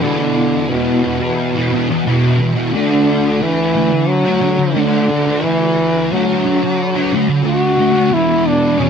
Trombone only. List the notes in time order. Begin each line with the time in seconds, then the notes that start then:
0.01 D3
0.69 B2
2.77 D3
3.42 E3
4.09 F#3
4.77 D3
5.42 E3
6.11 F#3
7.48 F#4
8.13 E4
8.47 D4
8.79 C#4